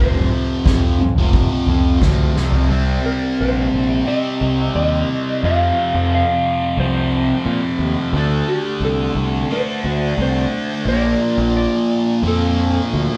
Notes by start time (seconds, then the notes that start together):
Already playing: F1 F2 C3 C5
0.00 F3
0.16 mid tom
0.31 F2 C3 F3
0.65 F2 C3 F3, kick, snare, floor tom, mid tom
0.82 C3 F3
0.98 muted distorted electric guitar stroke, mid tom
1.16 F1 C3 F3, floor tom
1.33 kick
1.51 C3 F3
1.67 F2 C3 F3, floor tom
2.01 D2 F2 C3 F3, kick, snare, floor tom
2.36 C2 F2 C3 F3, snare
2.52 C3 F3, floor tom
2.69 C2 C3 G3 C4
3.06 A#4
3.41 A#1 C5
3.74 A#1
4.07 C3 G3 C4 D#5
4.41 C2
4.75 D#2 D#5
5.43 F2 C3 F3 F5
5.94 F2
6.15 F5
6.77 C2 F2 C3 C5
6.82 F3
7.46 A#2
7.79 D#2
8.13 D2 D3 A3
8.17 D4
8.48 G4
8.80 C2
8.85 A4
9.15 C2
9.50 D3 A3 D4 C5
9.84 D2
10.17 C2
10.22 C5
10.85 A#1 A#2 F3 A#3 D5
11.38 A#1
11.57 D5
12.23 F2 A#2 F3 A#3
12.28 A4
12.94 D2